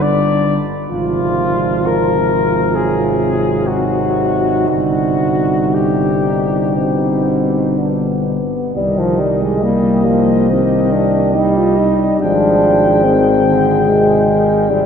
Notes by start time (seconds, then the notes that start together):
Already playing: G1 D3 G3
0.02 D4 D5
0.90 G#1 C3 F3 F4
1.87 A#4
2.75 F#3 G#4
3.67 D#4 F#4
4.69 G1 G3 F#4
5.74 G3 G4
6.75 B2 C4
7.76 B3 D4
8.75 C2 D#3 G3 G4 D#5
8.99 F3
9.19 G3
9.43 G#3
9.63 G3 A#3
10.07 F3
10.50 D#3 C4
10.92 D4
11.35 G3 D#4
11.57 F4
11.78 D#4
12.21 G#1 F3 D4 G#4 G5
13.04 D#3 C4
13.48 D3
13.88 C3 G#3
14.29 D#3
14.69 C3 G3